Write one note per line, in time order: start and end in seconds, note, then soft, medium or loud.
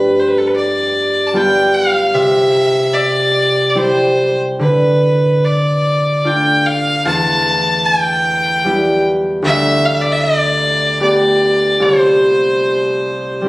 0.00 2.18 G2 soft
0.00 2.29 A3 soft
0.00 1.40 C4 soft
0.00 1.34 F4 soft
0.00 0.21 B4 medium
0.19 0.30 C5 medium
0.28 0.39 B4 medium
0.38 0.49 A4 medium
0.47 0.55 B4 medium
0.56 1.28 D5 medium
1.27 1.38 A5 soft
1.33 2.18 G3 soft
1.33 2.20 B3 soft
1.33 3.82 F4 soft
1.33 1.76 G5 medium
1.74 2.16 F5 medium
2.14 4.66 C3 soft
2.14 2.95 E5 medium
2.93 3.69 D5 medium
3.69 3.79 D5 soft
3.75 4.66 G3 soft
3.75 6.76 C4 soft
3.75 6.31 E4 soft
3.75 4.40 C5 medium
4.59 7.11 D3 soft
4.59 5.46 B4 medium
5.44 6.28 D5 medium
6.24 9.57 A3 soft
6.24 9.05 D4 soft
6.24 7.12 F4 soft
6.24 6.68 G5 medium
6.66 7.06 F5 medium
7.06 9.48 E2 medium
7.06 7.87 A5 medium
7.86 9.04 G5 medium
8.64 9.48 G3 soft
8.64 11.00 B3 soft
8.64 11.27 E4 soft
9.42 11.86 D2 soft
9.42 9.87 E5 medium
9.85 9.96 F5 medium
9.94 10.03 E5 medium
10.02 10.13 D5 medium
10.12 10.22 E5 medium
10.21 11.01 D5 medium
11.00 13.49 A3 soft
11.00 11.86 B3 soft
11.00 13.36 G4 soft
11.00 11.84 D5 medium
11.80 13.49 C2 soft
11.80 13.45 C5 medium
13.42 13.49 G3 soft
13.42 13.49 C4 soft